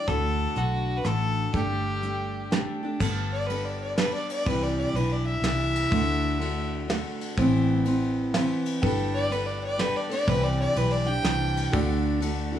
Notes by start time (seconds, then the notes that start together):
0.07 D2 D3 A3 D4 F#4 A4, kick, closed hi-hat
0.55 B1 D3 A3 D4 F#4, closed hi-hat
0.98 B4
1.03 A1 D3 A3 D4 F#4 A4, cross-stick, closed hi-hat
1.52 G1 G3 A3 D4 G4 A4, kick, closed hi-hat
2.02 G3 A3 D4 G4, closed hi-hat
2.51 G3 A3 D4 G4 A5, snare, closed hi-hat
2.83 A3 D4 G4
3.00 G1 G3 B3 D4 A4, kick, crash
3.33 D5
3.47 G3 B3 D4 B4, ride
3.52 A4
3.65 D5
3.82 D5
3.97 G3 B3 D4 A4 B4, snare, ride
4.15 D5
4.30 D5, ride
4.45 C2 C3 E3 G3 D4 E4 B4, kick, ride
4.63 D5
4.78 D5
4.94 B1 E3 G3 D4 E4 B4, ride
5.12 D5
5.27 E5
5.42 C2 E3 G3 D4, snare, ride
5.46 E4
5.75 ride
5.91 D2 D3 A3 D4 F#4, kick, ride
6.39 D3 A3 D4 F#4, ride
6.88 D3 A3 D4 F#4, snare, ride
7.21 ride
7.37 A1 A2 E3 B3 C4 E4, kick, ride
7.85 E3 B3 C4 E4, ride
8.34 E3 B3 C4 E4, snare, ride
8.66 ride
8.81 G1 G3 B3 D4 G4 A4 B4, kick, ride
9.14 D5
9.29 G3 B3 D4 A4 B4, ride
9.47 D5
9.64 D5
9.77 G3 B3 D4 G4 A4 B4 D5, snare, ride
9.96 D5
10.09 B3 D4 A4 D5, ride
10.26 C2 C3 E3 G3 D4 E4 G4 B4 C5 D5, kick, ride
10.44 D5
10.60 D5
10.74 B1 E3 G3 D4 G4 B4, ride
10.92 D5
11.06 G3 D4 G4 G5
11.23 C2 E3 G3 D4 G4, snare, ride
11.57 ride
11.71 D2 D3 A3 D4 F#4 A4 D5, kick, ride
12.20 D3 A3 D4 F#4, ride
12.52 A3 D4 F#4